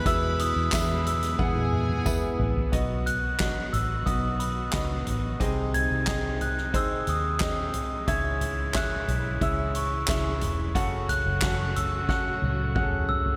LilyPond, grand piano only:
<<
  \new Staff \with { instrumentName = "Grand piano" } { \time 4/4 \key b \mixolydian \tempo 4 = 90 <b e' gis' e''>4 <b e' gis' e''>4 <b e' gis' fis''>4 <b e' gis' b'>4 | <b dis' fis' dis''>4 <b dis' fis' dis''>4 <b dis' fis' dis''>4 <b dis' fis' dis''>4 | <bis dis' gis' dis''>4 <bis dis' gis' dis''>4 <bis dis' gis' bis'>4 <bis dis' gis' dis''>4 | <cis' e' gis' e''>4 <cis' e' gis' e''>4 <cis' e' gis' e''>4 <cis' e' gis' e''>4 |
<cis' fis' a' fis''>4 <cis' fis' a' fis''>4 <cis' fis' a' fis''>4 <cis' fis' gis' a' fis''>4 | }
  \new Staff \with { instrumentName = "Grand piano" } { \clef bass \time 4/4 \key b \mixolydian b,4. r2 r8 | r1 | bis,4. r2 r8 | gis,4. r2 r8 |
cis4. r2 r8 | }
>>